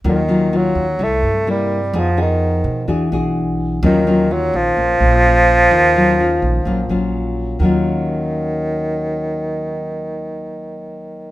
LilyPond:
<<
  \new Staff \with { instrumentName = "Nylon-string guitar" } { \time 4/4 \key ees \minor \tempo 4 = 127 << { <ges des' f'>8 <ges des' f'>8 <ges des' f'>8 r8 <g e'>8 r8 <g bes e'>8 r8 | <ces' ees' aes'>8 <ces' ees' aes'>4. <d' fis' gis'>8 <d' fis' gis'>4. | <ges des' f'>8 <ges des' f'>8 <des' f'>2 <des' f'>4 | r8 <ges des' f'>8 <des' f'>4 <ges des' f'>8 <ges des' f'>4. |
<ees ges des' f'>1~ | <ees ges des' f'>1 | } \\ { ees2 c2 | f2 e2 | ees2 bes,2 | ees2 bes,2 |
r1 | r1 | } >> }
  \new Staff \with { instrumentName = "Bassoon" } { \clef bass \time 4/4 \key ees \minor ees4 ges4 a4 g4 | f8 ees4. r2 | ees4 ges8 f2~ f8~ | f2. r4 |
ees1~ | ees1 | }
  \new Staff \with { instrumentName = "Upright bass" } { \clef bass \time 4/4 \key ees \minor ees,4. ees,8 c,8 g,4. | f,4. ces8 e,8 b,,4. | ees,4. bes,,8 bes,,8 bes,,4. | ees,4. bes,,8 bes,,8 bes,,4. |
ees,1~ | ees,1 | }
>>